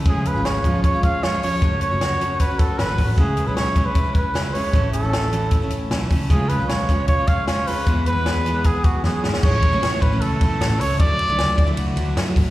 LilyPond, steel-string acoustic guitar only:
\new Staff \with { instrumentName = "Steel-string acoustic guitar" } { \time 4/4 \key a \major \tempo 4 = 154 <cis eis gis cis' eis'>8. <gis cis' eis'>8. <eis gis cis' eis'>8. <gis cis' eis'>8. <eis gis cis' eis'>8 <eis gis cis' eis'>8 | <fis a cis' fis'>8. <a cis' fis'>8. <fis a cis' fis'>8. <a cis' fis'>8. <fis a cis' fis'>8 <fis a cis' fis'>8 | <cis gis cis' e'>8. <gis cis' e'>8. <cis gis cis' e'>8. <gis cis' e'>8. <cis gis cis' e'>8 <cis gis cis' e'>8 | <a, e a cis' e'>8. <a cis' e'>8. <e a cis' e'>8. <a cis' e'>8. <e a cis' e'>8 <e a cis' e'>8 |
<cis gis cis' eis'>8. <gis cis' eis'>8. <cis gis cis' eis'>8. <gis cis' eis'>8. <cis gis cis' eis'>8 <cis gis cis' eis'>8 | <e gis b e'>8. <gis b e'>8. <e gis b e'>8. <gis b e'>8. <e gis b e'>8 <e gis b e'>8 | <e a cis' e'>8. <a, e a cis' e'>4 <a, e a cis' e'>8. <e a cis' e'>8. <a cis' e'>8. | <d fis a e'>8. <d fis a e'>4 <d fis a e'>8. <d fis a e'>8. <fis a e'>8. | }